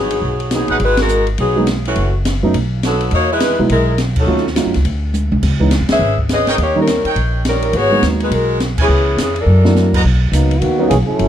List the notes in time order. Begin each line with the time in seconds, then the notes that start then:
Already playing: G1 F#3 B3 D#4 G#4
0.11 ride
0.22 B1
0.40 ride
0.51 F#3 A#3 B3 D#4 G#4, snare, hi-hat pedal, ride
0.55 F#3
0.68 A1 D#4 G#4 B4 F#5, ride
0.80 G#1 G#3 D#4 F#4 B4, ride
0.97 D#4 F#4 A#4, snare, ride
1.01 G#3
1.08 hi-hat pedal
1.27 ride
1.38 B1 F#3 B3 D#4 G#4, ride
1.56 F#3 G#3 A#3 B3 D#4
1.67 snare, hi-hat pedal, ride
1.85 E3 A3 C#4 F#4, ride
1.96 F#1, ride
2.25 snare, hi-hat pedal, ride
2.43 F#2 F#3 A3 B3 C#4 D#4
2.54 B1, ride
2.83 F#3 B3 D#4 A4, snare, hi-hat pedal, ride
3.01 ride
3.11 E2 A#3 D#4 F#4 C#5, ride
3.32 G#3 D#4 E4 B4
3.40 snare, hi-hat pedal, ride
3.59 B2 F#3 G#3 B3 D#4 E4
3.69 B1 G#3 D#4 E4 A#4, ride
3.98 snare, hi-hat pedal, ride
4.16 F#3 C#4 D#4 A4, kick, crash
4.27 D#2 F#3 A3 C#4 D#4 F4
4.37 snare
4.47 snare
4.55 F#3 A3 C#4 D#4 F4, snare, hi-hat pedal, ride
4.66 F#2
4.74 C#2, snare, ride
4.85 D2, ride
5.14 hi-hat pedal, high tom
5.31 C2, high tom
5.43 C#2, kick, snare, crash
5.60 E3 G#3 B3 C#4 D#4, kick
5.71 snare, hi-hat pedal, ride
5.81 E2
5.89 D2 C#4 G#4 B4 E5, snare, ride
5.99 G#1
6.18 kick
6.29 C#4 G#4 B4 D#5, snare, hi-hat pedal, ride
6.47 D#4 A#4 C#5 G5, snare, ride
6.58 D#2 A#3 D#4, ride
6.62 G4 C#5
6.75 D#3 G3 A#3 C#4 D#4
6.80 G3 C#4 D#4 A#4
6.87 snare, hi-hat pedal, ride
7.05 D#4 A#4 C#5 G5, muted upright bass stroke, ride
7.16 A#1, ride
7.45 G3 C#4 D#4 A#4, snare, hi-hat pedal, ride
7.62 ride
7.73 G#1 B3 F#4 G#4 C#5, ride
7.91 F#3 G#3 A#3 B3 D#4
8.02 D#2, snare, hi-hat pedal, ride
8.20 G#3 D#4 F#4 B4, ride
8.31 B1 G#3 D#4 F#4 A#4, ride
8.60 snare, hi-hat pedal, ride
8.78 E3 B3 C#4 E4 G#4 B4 C#5 G#5, kick, crash
8.88 C#2
9.17 F2, snare, hi-hat pedal, ride
9.21 E3 B3 C#4 G#4
9.36 ride
9.41 E3 D4 A4 A#4
9.46 F#2
9.64 F#3 A3 A#3 D4 E4, snare
9.76 snare, hi-hat pedal
9.94 F#4 B4 D#5 A#5, kick, crash
10.04 B1
10.32 C#2 F#3 A#3 B3 D#4, hi-hat pedal, ride
10.51 ride
10.59 D#2 D#3 A#3 B3 F#4, ride
10.79 F#3 A#3 B3 C#4 D#4
10.88 B1 E3 A#3 C#4 G#4, hi-hat pedal, ride
11.07 F#3 C#4 E4 A4, muted upright bass stroke
11.19 F#1, ride